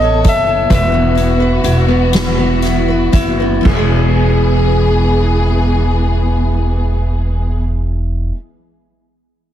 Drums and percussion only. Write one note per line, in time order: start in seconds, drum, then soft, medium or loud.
0.24 kick loud
0.24 closed hi-hat medium
0.70 kick loud
0.70 closed hi-hat medium
1.17 closed hi-hat soft
1.64 closed hi-hat medium
2.13 snare loud
2.13 closed hi-hat loud
2.62 snare soft
2.62 closed hi-hat medium
3.13 kick medium
3.13 closed hi-hat medium
3.65 kick loud
3.65 crash medium